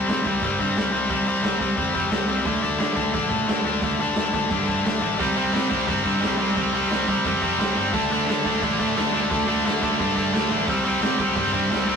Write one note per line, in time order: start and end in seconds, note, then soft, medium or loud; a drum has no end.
0.08 0.26 C3 medium
0.08 0.24 C3 medium
0.08 0.26 G3 medium
0.08 0.25 C4 medium
0.08 snare loud
0.08 open hi-hat medium
0.25 0.42 C2 medium
0.25 0.42 C3 medium
0.25 0.42 G3 medium
0.25 0.43 C4 medium
0.25 kick medium
0.25 open hi-hat medium
0.42 0.58 G1 medium
0.42 0.60 C3 medium
0.42 0.59 G3 medium
0.42 0.59 C4 medium
0.42 kick loud
0.42 open hi-hat medium
0.59 0.75 G2 medium
0.59 0.76 C3 medium
0.59 0.76 G3 medium
0.59 0.77 C4 medium
0.59 kick medium
0.59 open hi-hat medium
0.76 0.92 C2 medium
0.76 0.92 C3 medium
0.76 0.92 G3 loud
0.76 0.91 C4 loud
0.76 snare loud
0.76 open hi-hat medium
0.92 1.09 C2 medium
0.92 1.08 C3 medium
0.92 1.09 G3 medium
0.92 1.10 C4 loud
0.92 open hi-hat medium
1.09 1.25 C2 medium
1.09 1.27 C3 loud
1.09 1.27 G3 loud
1.09 1.26 C4 loud
1.09 kick loud
1.09 open hi-hat medium
1.26 1.42 C2 medium
1.26 1.42 C3 medium
1.26 1.43 G3 medium
1.26 1.43 C4 medium
1.26 open hi-hat medium
1.43 1.60 C2 medium
1.43 1.60 C3 medium
1.43 1.59 G3 medium
1.43 1.58 C4 medium
1.43 snare loud
1.43 open hi-hat medium
1.60 1.77 C2 medium
1.60 1.75 C3 medium
1.60 1.77 G3 medium
1.60 1.77 C4 medium
1.60 kick medium
1.60 open hi-hat medium
1.77 2.10 F2 medium
1.77 1.95 C3 medium
1.77 1.94 G3 medium
1.77 1.93 C4 medium
1.77 kick loud
1.77 open hi-hat medium
1.94 2.09 C3 medium
1.94 2.10 G3 medium
1.94 2.11 C4 medium
1.94 kick medium
1.94 open hi-hat medium
2.11 2.27 C2 medium
2.11 2.29 C3 loud
2.11 2.28 G3 loud
2.11 2.27 C4 loud
2.11 snare loud
2.11 open hi-hat medium
2.28 2.44 C2 medium
2.28 2.45 C3 medium
2.28 2.45 G3 medium
2.28 2.45 C4 medium
2.28 open hi-hat medium
2.45 2.62 D2 medium
2.45 2.63 D3 loud
2.45 2.62 A3 loud
2.45 2.61 D4 loud
2.45 kick loud
2.45 open hi-hat medium
2.62 2.79 D2 medium
2.62 2.78 D3 medium
2.62 2.79 A3 medium
2.62 2.79 D4 medium
2.62 open hi-hat medium
2.78 2.97 D3 medium
2.78 2.96 D3 medium
2.78 2.96 A3 medium
2.78 2.96 D4 medium
2.78 snare loud
2.78 open hi-hat medium
2.96 3.13 D2 medium
2.96 3.12 D3 medium
2.96 3.13 A3 medium
2.96 3.13 D4 medium
2.96 kick medium
2.96 open hi-hat medium
3.13 3.30 A1 medium
3.13 3.30 D3 medium
3.13 3.30 A3 medium
3.13 3.28 D4 loud
3.13 kick loud
3.13 open hi-hat medium
3.30 3.47 A2 medium
3.30 3.47 D3 medium
3.30 3.47 A3 medium
3.30 3.48 D4 medium
3.30 kick medium
3.30 open hi-hat medium
3.48 3.64 D2 medium
3.48 3.65 D3 loud
3.48 3.64 A3 loud
3.48 3.64 D4 loud
3.48 snare loud
3.48 open hi-hat medium
3.64 3.81 D2 medium
3.64 3.81 D3 medium
3.64 3.82 A3 medium
3.64 3.82 D4 medium
3.64 open hi-hat soft
3.81 3.98 D2 medium
3.81 4.00 D3 medium
3.81 3.99 A3 loud
3.81 3.99 D4 loud
3.81 kick loud
3.81 open hi-hat medium
3.98 4.15 D2 medium
3.98 4.16 D3 medium
3.98 4.17 A3 medium
3.98 4.17 D4 medium
3.98 open hi-hat medium
4.15 4.32 D2 medium
4.15 4.33 D3 medium
4.15 4.33 A3 medium
4.15 4.33 D4 medium
4.15 snare loud
4.15 open hi-hat medium
4.33 4.50 D2 medium
4.33 4.49 D3 medium
4.33 4.50 A3 medium
4.33 4.51 D4 medium
4.33 kick medium
4.33 open hi-hat medium
4.50 4.83 G2 medium
4.50 4.69 D3 medium
4.50 4.67 A3 medium
4.50 4.67 D4 medium
4.50 kick loud
4.50 open hi-hat medium
4.68 4.84 D3 medium
4.68 4.85 A3 medium
4.68 4.85 D4 medium
4.68 kick medium
4.68 open hi-hat medium
4.85 5.01 D2 medium
4.85 5.02 D3 medium
4.85 5.02 A3 loud
4.85 5.01 D4 loud
4.85 snare loud
4.85 open hi-hat medium
5.02 5.18 A1 medium
5.02 5.19 D3 medium
5.02 5.19 A3 medium
5.02 5.18 D4 medium
5.02 open hi-hat medium
5.19 5.36 C2 medium
5.19 5.37 C3 medium
5.19 5.36 G3 medium
5.19 5.36 C4 medium
5.19 kick loud
5.19 open hi-hat medium
5.36 5.53 C2 medium
5.36 5.52 C3 medium
5.36 5.53 G3 medium
5.36 5.53 C4 medium
5.36 open hi-hat medium
5.53 5.70 C3 medium
5.53 5.70 G3 medium
5.53 5.69 C4 medium
5.53 snare loud
5.53 open hi-hat medium
5.69 5.87 C2 medium
5.69 5.85 C3 medium
5.69 5.86 G3 medium
5.69 5.87 C4 loud
5.69 kick medium
5.69 open hi-hat medium
5.87 6.04 G1 medium
5.87 6.04 C3 medium
5.87 6.03 G3 medium
5.87 6.03 C4 medium
5.87 kick loud
5.87 open hi-hat medium
6.04 6.21 G2 medium
6.04 6.20 C3 medium
6.04 6.20 G3 medium
6.04 6.21 C4 medium
6.04 kick medium
6.04 open hi-hat medium
6.21 6.38 C2 medium
6.21 6.38 C3 medium
6.21 6.37 G3 medium
6.21 6.37 C4 loud
6.21 snare loud
6.21 open hi-hat medium
6.38 6.55 C2 medium
6.38 6.54 C3 medium
6.38 6.55 G3 medium
6.38 6.56 C4 medium
6.38 open hi-hat medium
6.56 6.73 C2 medium
6.56 6.74 C3 medium
6.56 6.73 G3 medium
6.56 6.72 C4 loud
6.56 kick loud
6.56 open hi-hat medium
6.73 6.90 C2 medium
6.73 6.90 C3 medium
6.73 6.90 G3 medium
6.73 6.91 C4 medium
6.73 open hi-hat medium
6.90 7.07 C2 medium
6.90 7.09 C3 medium
6.90 7.09 G3 medium
6.90 7.08 C4 loud
6.90 snare loud
6.90 open hi-hat medium
7.07 7.24 C2 medium
7.07 7.24 C3 medium
7.07 7.25 G3 medium
7.07 7.26 C4 loud
7.07 kick medium
7.07 open hi-hat medium
7.24 7.57 F2 medium
7.24 7.42 C3 medium
7.24 7.42 G3 medium
7.24 7.41 C4 medium
7.24 kick loud
7.24 open hi-hat medium
7.42 7.58 C3 medium
7.42 7.58 G3 medium
7.42 7.59 C4 medium
7.42 kick medium
7.42 open hi-hat medium
7.59 7.75 C2 medium
7.59 7.77 C3 loud
7.59 7.76 G3 loud
7.59 7.75 C4 loud
7.59 snare loud
7.59 open hi-hat medium
7.77 7.93 G1 medium
7.77 7.92 C3 medium
7.77 7.93 G3 medium
7.77 7.93 C4 medium
7.77 open hi-hat medium
7.93 8.10 D2 medium
7.93 8.13 D3 medium
7.93 8.13 A3 loud
7.93 8.11 D4 medium
7.93 kick loud
7.93 open hi-hat medium
8.10 8.26 D2 medium
8.10 8.28 D3 medium
8.10 8.28 A3 medium
8.10 8.29 D4 medium
8.10 open hi-hat medium
8.27 8.44 D3 medium
8.27 8.46 D3 medium
8.27 8.45 A3 medium
8.27 8.44 D4 medium
8.27 snare loud
8.27 open hi-hat medium
8.45 8.61 D2 medium
8.45 8.61 D3 medium
8.45 8.62 A3 loud
8.45 8.63 D4 medium
8.45 kick medium
8.45 open hi-hat medium
8.62 8.78 A1 medium
8.62 8.79 D3 medium
8.62 8.79 A3 medium
8.62 8.78 D4 medium
8.62 kick loud
8.62 open hi-hat medium
8.79 8.95 A2 medium
8.79 8.95 D3 medium
8.79 8.96 A3 medium
8.79 8.97 D4 medium
8.79 kick medium
8.79 open hi-hat medium
8.96 9.13 D2 medium
8.96 9.13 D3 medium
8.96 9.12 A3 loud
8.96 9.12 D4 loud
8.96 snare loud
8.96 open hi-hat medium
9.13 9.30 D2 medium
9.13 9.29 D3 medium
9.13 9.30 A3 medium
9.13 9.30 D4 medium
9.13 open hi-hat medium
9.30 9.47 D2 medium
9.30 9.48 D3 medium
9.30 9.47 A3 loud
9.30 9.46 D4 loud
9.30 kick loud
9.30 open hi-hat medium
9.47 9.64 D2 medium
9.47 9.64 D3 medium
9.47 9.65 A3 medium
9.47 9.65 D4 medium
9.47 open hi-hat medium
9.64 9.81 D2 medium
9.64 9.82 D3 medium
9.64 9.81 A3 medium
9.64 9.81 D4 medium
9.64 snare loud
9.64 open hi-hat medium
9.82 9.98 D2 medium
9.82 9.98 D3 medium
9.82 9.99 A3 medium
9.82 9.99 D4 loud
9.82 kick medium
9.82 open hi-hat medium
9.99 10.32 G2 medium
9.99 10.16 D3 medium
9.99 10.16 A3 medium
9.99 10.15 D4 medium
9.99 kick loud
9.99 open hi-hat medium
10.16 10.31 D3 medium
10.16 10.32 A3 medium
10.16 10.33 D4 medium
10.16 kick medium
10.16 open hi-hat medium
10.33 10.49 D2 medium
10.33 10.50 D3 loud
10.33 10.50 A3 loud
10.33 10.49 D4 loud
10.33 snare loud
10.33 open hi-hat medium
10.50 10.66 A1 medium
10.50 10.67 D3 medium
10.50 10.67 A3 medium
10.50 10.67 D4 medium
10.50 open hi-hat medium
10.68 10.84 C2 medium
10.68 10.85 C3 medium
10.68 10.85 G3 medium
10.68 10.84 C4 loud
10.68 kick loud
10.68 open hi-hat medium
10.85 11.01 C2 medium
10.85 11.01 C3 medium
10.85 11.02 G3 medium
10.85 11.03 C4 medium
10.85 open hi-hat medium
11.02 11.20 C3 medium
11.02 11.19 C3 medium
11.02 11.20 G3 medium
11.02 11.19 C4 medium
11.02 snare loud
11.02 open hi-hat medium
11.19 11.35 C2 medium
11.19 11.34 C3 medium
11.19 11.36 G3 medium
11.19 11.36 C4 medium
11.19 kick medium
11.19 open hi-hat medium
11.36 11.52 G1 medium
11.36 11.53 C3 medium
11.36 11.53 G3 medium
11.36 11.52 C4 medium
11.36 kick loud
11.36 open hi-hat medium
11.53 11.69 G2 medium
11.53 11.68 C3 medium
11.53 11.70 G3 medium
11.53 11.70 C4 medium
11.53 kick medium
11.53 open hi-hat medium
11.70 11.87 C2 medium
11.70 11.87 C3 loud
11.70 11.88 G3 loud
11.70 11.86 C4 loud
11.70 snare loud
11.70 open hi-hat medium
11.87 11.96 C2 medium
11.87 11.96 C3 medium
11.87 11.96 G3 medium
11.87 11.96 C4 medium
11.87 open hi-hat medium